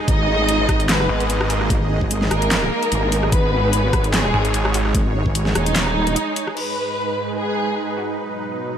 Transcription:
0.00 6.53 G#3 medium
0.00 6.53 D#4 medium
0.00 6.53 G#4 medium
0.08 0.67 G#1 medium
0.08 0.82 D#4 medium
0.08 3.31 D#5 medium
0.08 0.82 D#5 loud
0.08 kick loud
0.08 closed hi-hat medium
0.49 closed hi-hat medium
0.69 1.08 G#1 loud
0.69 kick loud
0.69 cross-stick medium
0.69 closed hi-hat medium
0.80 closed hi-hat soft
0.89 1.42 B3 medium
0.89 1.42 B4 medium
0.89 snare loud
0.89 clap medium
0.89 closed hi-hat medium
1.00 cross-stick medium
1.09 1.69 G#1 medium
1.20 closed hi-hat soft
1.30 closed hi-hat medium
1.41 cross-stick medium
1.50 1.71 A#3 medium
1.50 1.71 A#4 medium
1.50 open hi-hat medium
1.61 cross-stick medium
1.70 2.29 G#1 loud
1.70 kick loud
1.70 closed hi-hat medium
2.01 kick medium
2.11 closed hi-hat medium
2.22 snare soft
2.31 2.70 G#1 medium
2.31 3.25 A#3 medium
2.31 3.25 A#4 loud
2.31 cross-stick medium
2.31 closed hi-hat medium
2.42 closed hi-hat medium
2.51 snare loud
2.51 clap loud
2.51 closed hi-hat medium
2.62 cross-stick medium
2.83 closed hi-hat soft
2.92 3.31 G#1 loud
2.92 closed hi-hat medium
3.12 open hi-hat medium
3.23 cross-stick medium
3.32 3.92 G#1 medium
3.32 4.06 B3 medium
3.32 4.06 B4 loud
3.32 6.56 C#5 medium
3.32 kick loud
3.32 closed hi-hat medium
3.73 closed hi-hat medium
3.93 4.32 G#1 loud
3.93 kick loud
3.93 cross-stick medium
3.93 closed hi-hat medium
4.04 closed hi-hat medium
4.13 4.67 G#3 medium
4.13 4.67 G#4 loud
4.13 snare loud
4.13 clap medium
4.13 closed hi-hat medium
4.25 cross-stick medium
4.34 4.93 G#1 medium
4.45 closed hi-hat medium
4.54 closed hi-hat medium
4.65 cross-stick medium
4.74 4.95 F#4 medium
4.74 open hi-hat medium
4.85 cross-stick medium
4.94 5.54 G#1 loud
4.94 kick loud
4.94 closed hi-hat medium
5.26 kick medium
5.35 closed hi-hat medium
5.46 snare soft
5.55 6.16 D#1 loud
5.55 6.49 D#4 loud
5.55 cross-stick medium
5.55 closed hi-hat medium
5.66 closed hi-hat medium
5.76 snare loud
5.76 clap loud
5.76 closed hi-hat medium
5.87 cross-stick medium
6.07 closed hi-hat medium
6.16 closed hi-hat medium
6.36 open hi-hat medium
6.47 cross-stick medium
6.57 8.17 G#2 medium
6.57 8.17 G#3 medium
6.57 8.78 D#4 medium
6.57 8.78 B4 medium
6.57 7.30 B4 medium
6.57 crash medium
7.37 7.91 G#4 medium
7.98 8.19 F#4 medium
8.19 8.78 B2 medium
8.19 8.78 F#3 medium

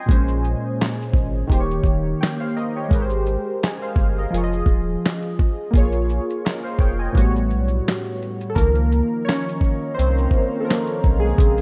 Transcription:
0.00 0.28 D#5 medium
0.00 0.11 G5 medium
0.00 0.27 G#5 medium
0.00 0.11 A#5 soft
0.00 0.12 C6 medium
0.00 0.11 D#6 medium
0.06 0.55 A#1 loud
0.06 1.46 A#2 medium
0.06 1.47 G#3 medium
0.06 kick loud
0.10 1.48 C#4 medium
0.10 1.49 C5 medium
0.10 closed hi-hat medium
0.10 shaker medium
0.28 shaker medium
0.44 shaker soft
0.82 snare loud
0.82 clap medium
0.82 closed hi-hat medium
0.82 shaker medium
1.01 shaker soft
1.13 1.44 G#1 medium
1.13 kick medium
1.13 shaker soft
1.47 1.79 D#1 loud
1.47 2.87 D#3 medium
1.47 2.88 A#3 medium
1.47 kick medium
1.52 2.20 G4 medium
1.52 1.59 C5 medium
1.52 closed hi-hat medium
1.52 shaker medium
1.60 2.20 C#5 medium
1.71 shaker soft
1.84 2.14 D#1 medium
1.84 kick medium
1.84 shaker soft
2.21 2.40 C#5 soft
2.21 2.40 G5 medium
2.21 snare loud
2.21 clap medium
2.21 closed hi-hat medium
2.21 shaker medium
2.40 2.56 C5 medium
2.40 2.55 F5 medium
2.40 shaker soft
2.57 2.75 A#4 medium
2.57 2.75 D#5 medium
2.57 shaker soft
2.76 2.90 G4 medium
2.76 3.10 C#5 medium
2.89 3.37 G#1 loud
2.89 4.29 G#3 medium
2.89 4.30 G4 medium
2.89 kick loud
2.93 3.62 A#4 medium
2.93 3.01 B4 medium
2.93 closed hi-hat medium
2.93 shaker medium
3.02 3.66 C5 medium
3.10 shaker medium
3.26 shaker soft
3.63 3.82 D#5 medium
3.63 3.81 G#5 medium
3.63 snare loud
3.63 clap medium
3.63 closed hi-hat medium
3.63 shaker medium
3.82 4.16 C5 medium
3.82 4.16 F5 medium
3.82 shaker soft
3.96 4.26 G1 medium
3.96 kick medium
3.96 shaker soft
4.18 4.52 A#4 medium
4.18 4.42 D#5 medium
4.30 4.62 F1 loud
4.30 5.70 F3 medium
4.30 5.71 F4 medium
4.34 5.72 G#4 medium
4.34 4.42 C#5 medium
4.34 closed hi-hat medium
4.34 shaker medium
4.43 5.77 D#5 medium
4.53 shaker soft
4.66 4.96 D#1 medium
4.66 kick medium
4.66 shaker soft
5.06 snare loud
5.06 clap medium
5.06 closed hi-hat medium
5.06 shaker medium
5.22 shaker soft
5.39 kick medium
5.39 shaker soft
5.71 6.19 A#1 loud
5.71 7.11 A#3 medium
5.71 7.12 F4 medium
5.71 kick loud
5.75 7.13 G#4 medium
5.75 6.45 C#5 medium
5.75 closed hi-hat medium
5.75 shaker medium
5.92 shaker medium
6.09 shaker soft
6.30 shaker soft
6.45 6.64 A#4 medium
6.45 6.64 D#5 medium
6.45 snare loud
6.45 clap medium
6.45 closed hi-hat medium
6.45 shaker medium
6.64 6.79 C5 medium
6.64 6.79 F5 medium
6.64 shaker soft
6.79 7.08 F1 medium
6.79 6.99 C#5 medium
6.79 6.99 G5 medium
6.79 kick medium
6.79 shaker soft
6.99 7.33 D#5 soft
6.99 7.33 G#5 medium
7.12 7.54 A1 medium
7.12 8.52 A2 medium
7.12 8.53 G3 medium
7.12 8.54 B3 medium
7.12 kick medium
7.17 8.54 F#4 medium
7.17 8.55 C#5 medium
7.17 closed hi-hat medium
7.17 shaker medium
7.36 shaker soft
7.50 7.81 B1 medium
7.50 shaker soft
7.68 shaker soft
7.88 snare loud
7.88 clap medium
7.88 closed hi-hat medium
7.88 shaker medium
8.04 shaker soft
8.22 shaker soft
8.41 shaker soft
8.50 8.56 A4 medium
8.55 9.02 C#2 loud
8.55 9.05 D#3 medium
8.55 9.05 F3 soft
8.55 9.24 A#3 medium
8.55 9.28 A#4 loud
8.55 11.62 A#4 medium
8.55 11.36 D#5 medium
8.55 11.62 F5 medium
8.55 11.62 A#5 medium
8.55 kick loud
8.55 closed hi-hat medium
8.55 shaker medium
8.75 shaker medium
8.92 shaker medium
9.25 9.94 C#4 medium
9.25 9.99 C#5 loud
9.29 snare loud
9.29 clap medium
9.29 closed hi-hat medium
9.29 shaker medium
9.49 shaker soft
9.61 kick medium
9.61 shaker soft
9.94 10.58 C4 medium
9.94 10.62 C5 loud
9.99 10.27 C2 medium
9.99 closed hi-hat medium
9.99 shaker medium
10.18 shaker soft
10.31 10.65 D#3 soft
10.31 10.65 F3 soft
10.31 10.65 A#3 medium
10.31 kick medium
10.31 shaker soft
10.60 10.67 A4 medium
10.65 11.23 A#4 medium
10.69 11.20 A#3 medium
10.69 snare loud
10.69 clap medium
10.69 closed hi-hat medium
10.69 shaker medium
10.87 shaker soft
11.04 11.33 B1 medium
11.04 kick medium
11.04 shaker soft
11.20 11.62 G#4 medium
11.24 11.38 G#3 medium
11.38 11.62 A#1 loud
11.38 11.62 C#3 medium
11.38 11.62 G#3 soft
11.38 11.62 C4 medium
11.38 11.62 G#5 medium
11.38 kick loud
11.38 closed hi-hat medium
11.38 shaker medium
11.58 shaker medium

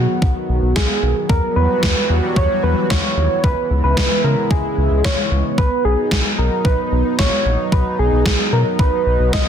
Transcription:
0.00 1.25 D#3 medium
0.00 1.25 F#3 medium
0.00 1.25 B3 medium
0.00 0.75 F#4 medium
0.22 0.34 B1 loud
0.22 kick loud
0.49 0.61 B1 loud
0.62 0.74 B1 loud
0.76 0.87 B1 loud
0.76 1.31 G#4 medium
0.76 kick loud
0.76 snare loud
1.03 1.14 B1 medium
1.29 1.41 E2 loud
1.29 5.54 E3 medium
1.29 3.42 F#3 medium
1.29 3.42 G3 medium
1.29 3.42 B3 medium
1.29 3.42 F#4 medium
1.29 1.58 A#4 loud
1.29 kick loud
1.56 1.68 E2 loud
1.56 2.38 B4 loud
1.83 1.94 E2 loud
1.83 kick loud
1.83 snare loud
2.10 2.21 E2 loud
2.36 2.48 E2 loud
2.36 2.63 C#5 loud
2.36 kick loud
2.63 2.75 E2 loud
2.63 2.92 B4 loud
2.90 3.02 D#2 loud
2.90 3.45 C#5 medium
2.90 kick loud
2.90 snare loud
3.17 3.28 D#2 medium
3.44 3.55 C#2 loud
3.44 5.56 C#3 medium
3.44 5.56 G#3 medium
3.44 9.48 B3 medium
3.44 5.56 E4 medium
3.44 3.83 B4 loud
3.44 kick loud
3.70 3.82 C#2 loud
3.84 3.95 C#2 loud
3.84 4.21 B4 loud
3.97 4.09 C#2 loud
3.97 kick loud
3.97 snare loud
4.24 4.36 C#3 loud
4.24 4.52 A#4 medium
4.51 4.62 C#2 loud
4.51 5.04 G#4 loud
4.51 kick loud
4.78 4.89 C#2 loud
4.91 5.02 C#2 loud
5.04 5.16 C#2 loud
5.04 5.59 C#5 loud
5.04 kick loud
5.04 snare loud
5.31 5.43 C#2 loud
5.58 5.69 B1 loud
5.58 9.48 F#3 medium
5.58 9.48 D#4 medium
5.58 5.86 B4 loud
5.58 kick loud
5.85 5.96 B1 loud
5.85 6.40 G#4 loud
6.11 6.23 B1 loud
6.11 kick loud
6.11 snare loud
6.38 6.50 B1 loud
6.38 6.65 A#4 medium
6.65 6.76 B1 loud
6.65 7.20 B4 loud
6.65 kick loud
6.92 7.03 B1 loud
7.19 7.30 A#1 loud
7.19 7.72 C#5 loud
7.19 kick loud
7.19 snare loud
7.45 7.57 A#1 medium
7.72 7.84 B1 loud
7.72 7.97 B4 loud
7.72 kick loud
7.99 8.11 B1 loud
7.99 8.54 G#4 loud
8.12 8.24 B1 medium
8.26 8.37 B1 loud
8.26 kick loud
8.26 snare loud
8.53 8.64 B2 loud
8.53 8.81 A#4 loud
8.79 8.91 B1 loud
8.79 9.33 B4 loud
8.79 kick loud
9.06 9.18 B1 loud
9.19 9.31 B1 loud
9.33 9.45 B1 loud
9.33 9.48 D#5 loud
9.33 kick loud
9.33 snare loud

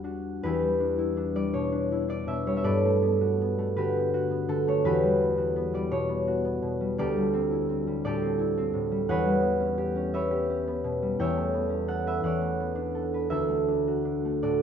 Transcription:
0.00 0.43 E2 soft
0.00 0.61 G3 soft
0.00 0.79 D4 soft
0.00 0.42 B4 soft
0.00 0.60 D5 medium
0.00 1.83 B5 medium
0.00 0.58 D6 medium
0.04 0.47 F#4 soft
0.43 2.68 E2 medium
0.43 0.97 E4 medium
0.43 3.76 G4 medium
0.43 2.63 B4 medium
0.62 1.34 G3 soft
0.80 1.16 D4 soft
0.98 1.91 E4 soft
1.17 1.71 D4 soft
1.35 2.46 G3 soft
1.35 1.67 D5 medium
1.53 2.26 B2 soft
1.53 2.46 C#5 medium
1.72 2.07 D4 soft
1.92 2.69 E4 soft
2.08 4.88 D4 soft
2.08 2.41 D5 medium
2.27 2.68 B2 soft
2.27 2.56 E5 medium
2.47 5.02 G3 soft
2.47 2.67 C#5 medium
2.57 2.70 E5 medium
2.63 4.88 G2 medium
2.63 4.48 A4 medium
2.63 3.75 B4 medium
2.63 4.88 D5 medium
2.85 3.57 A3 soft
3.02 3.40 B3 soft
3.21 3.77 F#4 soft
3.41 3.95 B3 soft
3.58 4.66 A3 soft
3.76 4.47 D3 soft
3.76 4.13 F#4 medium
3.76 4.85 G4 medium
3.76 4.84 B4 medium
3.96 4.30 B3 soft
4.14 4.85 F#4 soft
4.31 5.20 B3 soft
4.48 4.88 D3 soft
4.48 4.88 A4 medium
4.67 4.88 A3 soft
4.67 4.99 C#5 medium
4.85 7.01 E2 medium
4.85 5.36 F#4 medium
4.85 6.98 G4 medium
4.85 7.01 B4 medium
5.03 5.73 G3 soft
5.21 5.55 B3 soft
5.38 6.26 F#4 soft
5.56 6.08 B3 soft
5.74 6.79 G3 medium
5.74 6.05 D5 medium
5.91 6.61 B2 soft
5.91 7.72 C#5 medium
6.09 6.43 B3 soft
6.28 7.01 F#4 soft
6.45 7.01 B3 soft
6.62 7.01 B2 soft
6.81 7.15 G3 soft
6.98 9.11 D2 medium
6.98 8.05 G4 medium
6.98 8.05 A4 medium
6.98 8.03 D5 medium
7.17 7.86 G3 soft
7.33 7.68 C4 soft
7.52 8.37 E4 soft
7.69 8.21 C4 soft
7.87 8.90 G3 soft
8.04 8.72 A2 soft
8.04 9.76 G4 medium
8.04 9.13 A4 medium
8.04 9.12 D5 medium
8.22 8.56 C4 soft
8.39 12.26 E4 soft
8.57 9.12 C4 soft
8.73 9.11 A2 soft
8.91 9.25 G3 soft
9.09 11.19 E2 medium
9.09 10.13 B4 medium
9.09 10.14 C#5 medium
9.09 10.86 F#5 loud
9.26 11.01 G3 soft
9.41 10.13 B3 medium
9.60 9.94 C#4 soft
9.78 10.30 G4 medium
9.95 10.49 C#4 soft
10.14 10.66 B3 soft
10.14 12.06 B4 medium
10.14 11.19 C#5 medium
10.14 11.20 E5 medium
10.31 12.26 G4 medium
10.50 11.68 C#4 soft
10.67 11.52 B3 soft
10.84 11.21 B2 soft
11.02 12.27 G3 soft
11.20 12.22 E2 medium
11.20 12.24 C#5 medium
11.20 12.06 E5 medium
11.20 12.27 G5 medium
11.37 12.40 A3 soft
11.54 12.59 B3 soft
11.69 13.33 C#4 soft
11.88 12.94 A4 soft
11.88 12.18 F#5 medium
12.07 13.13 B4 soft
12.07 12.37 E5 medium
12.23 13.34 E2 medium
12.23 13.34 C#5 medium
12.23 14.41 D5 medium
12.23 14.62 F#5 medium
12.41 13.47 A3 soft
12.60 13.34 B3 soft
12.75 13.67 D4 soft
12.95 13.30 A4 soft
13.14 13.34 B4 soft
13.30 14.62 D2 medium
13.30 14.42 A4 medium
13.30 14.62 E5 medium
13.49 14.24 A3 soft
13.68 14.04 D4 soft
13.88 14.43 F#4 soft
14.05 14.62 D4 soft
14.25 14.62 A3 soft
14.43 14.62 A2 soft
14.43 14.62 F#4 soft
14.43 14.62 A4 medium
14.43 14.62 D5 medium

